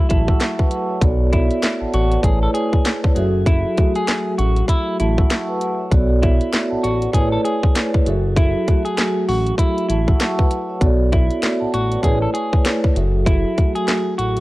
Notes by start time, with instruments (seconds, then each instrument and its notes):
Already playing: vibraphone F#3 A3 F#4 G#4 A4
0.09 analog synth bass A1, clean electric guitar E4, vibraphone A5, kick, closed hi-hat
0.28 vibraphone F#5 C#6 E6, kick
0.40 vibraphone E5 A5 C#6, snare, clap, closed hi-hat
0.59 vibraphone B4 F#5 A5, kick
0.71 vibraphone F#5, closed hi-hat
0.89 vibraphone C#5 E5
1.00 analog synth bass B1, vibraphone B3 F#4 A4 C#5 D5, kick, closed hi-hat
1.33 clean electric guitar E4, kick, closed hi-hat
1.51 closed hi-hat
1.63 finger snap, snare, clap, closed hi-hat
1.80 analog synth bass A1, vibraphone F#5 A5
1.93 analog synth bass A1, clean electric guitar F#4, vibraphone D5 F#5, closed hi-hat
2.11 vibraphone B4 D5, closed hi-hat
2.22 analog synth bass A1, vibraphone A3 E4 G#4 B4 C#5, clean electric guitar G#4, kick, closed hi-hat
2.43 clean electric guitar A4
2.54 clean electric guitar G#4, closed hi-hat
2.73 kick
2.85 finger snap, snare, clap, closed hi-hat
3.04 kick
3.15 analog synth bass F#1, vibraphone F#3 F#4 G#4 A4 E5, closed hi-hat
3.46 clean electric guitar E4, kick, closed hi-hat
3.77 vibraphone F#3 A3 F#4 G#4 E5, kick, closed hi-hat
3.96 clean electric guitar G#4, closed hi-hat
4.08 finger snap, snare, clap, closed hi-hat
4.38 analog synth bass A1, clean electric guitar F#4, closed hi-hat
4.56 closed hi-hat
4.68 clean electric guitar E4, kick, closed hi-hat
5.00 analog synth bass A1, clean electric guitar E4, vibraphone A5, closed hi-hat
5.17 vibraphone F#5 C#6 E6, kick
5.30 vibraphone E5 A5 C#6, finger snap, snare, clap, closed hi-hat
5.49 vibraphone B4 F#5 A5
5.61 vibraphone F#5, closed hi-hat
5.79 vibraphone C#5 E5
5.90 analog synth bass B1, vibraphone B3 F#4 A4 C#5 D5, kick, closed hi-hat
6.22 clean electric guitar E4, kick, closed hi-hat
6.41 closed hi-hat
6.53 finger snap, snare, clap, closed hi-hat
6.70 analog synth bass A1, vibraphone F#5 A5
6.83 analog synth bass A1, clean electric guitar F#4, vibraphone D5 F#5, closed hi-hat
7.01 vibraphone B4 D5, closed hi-hat
7.12 analog synth bass A1, vibraphone A3 E4 G#4 B4 C#5, clean electric guitar G#4, kick, closed hi-hat
7.32 clean electric guitar A4
7.45 clean electric guitar G#4, closed hi-hat
7.63 kick
7.75 finger snap, snare, clap, closed hi-hat
7.94 kick
8.05 analog synth bass F#1, vibraphone F#3 F#4 G#4 A4 E5, closed hi-hat
8.36 clean electric guitar E4, kick, closed hi-hat
8.66 vibraphone F#3 A3 F#4 G#4 E5, kick, closed hi-hat
8.85 clean electric guitar G#4, closed hi-hat
8.97 finger snap, snare, clap, closed hi-hat
9.29 analog synth bass A1, clean electric guitar F#4, open hi-hat
9.47 closed hi-hat
9.58 clean electric guitar E4, kick, closed hi-hat
9.78 closed hi-hat
9.89 analog synth bass A1, clean electric guitar E4, vibraphone A5, closed hi-hat
10.07 vibraphone F#5 C#6 E6, kick
10.20 vibraphone E5 A5 C#6, finger snap, snare, clap, closed hi-hat
10.39 vibraphone B4 F#5 A5, kick
10.51 vibraphone F#5, closed hi-hat
10.69 vibraphone C#5 E5
10.80 analog synth bass B1, vibraphone B3 F#4 A4 C#5 D5, kick, closed hi-hat
11.12 clean electric guitar E4, kick, closed hi-hat
11.31 closed hi-hat
11.42 finger snap, snare, clap, closed hi-hat
11.60 analog synth bass A1, vibraphone F#5 A5
11.74 analog synth bass A1, clean electric guitar F#4, closed hi-hat
11.91 vibraphone B4 D5, closed hi-hat
12.02 analog synth bass A1, vibraphone A3 E4 G#4 B4 C#5, clean electric guitar G#4, kick, closed hi-hat
12.22 clean electric guitar A4
12.34 clean electric guitar G#4, closed hi-hat
12.53 kick
12.65 finger snap, snare, clap, closed hi-hat
12.84 kick
12.94 analog synth bass F#1, vibraphone F#3 F#4 G#4 A4 E5, closed hi-hat
13.26 clean electric guitar E4, kick, closed hi-hat
13.56 vibraphone F#3 A3 F#4 G#4 E5, kick, closed hi-hat
13.75 clean electric guitar G#4, closed hi-hat
13.88 snare, clap, closed hi-hat
14.18 analog synth bass A1, clean electric guitar F#4, closed hi-hat
14.37 closed hi-hat